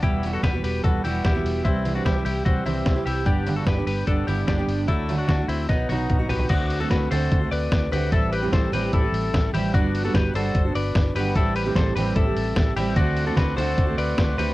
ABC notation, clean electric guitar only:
X:1
M:4/4
L:1/16
Q:1/4=148
K:Dmix
V:1 name="Clean electric guitar"
[EG]3 [FA] [GB]2 [GB]2 [FA]2 [EG]2 [EG]4 | [CE]3 [DF] [EG]2 [EG]2 [CF]2 [CE]4 [EG]2 | [DG]3 [FA] [GB]2 [GB]2 [DA]2 [EG]2 [DG]4 | [A,E]3 [DF] [DF]2 [CE]2 [B,^D]2 [DF]4 [GB]2 |
[DF]3 [FA] [FB]2 [Ac]4 [Bd]4 [GB]2 | [EA]2 [GB]2 [Ac]2 [GB]2 [EA]6 [EG]2 | [DF]3 [FA] [GB]2 [Ac]4 [Bd]4 [GB]2 | [EA]2 [GB]2 [Ac]2 [GB]2 [EA]6 [EG]2 |
[DF]3 [FA] [FB]2 [Ac]4 [Bd]4 [GB]2 |]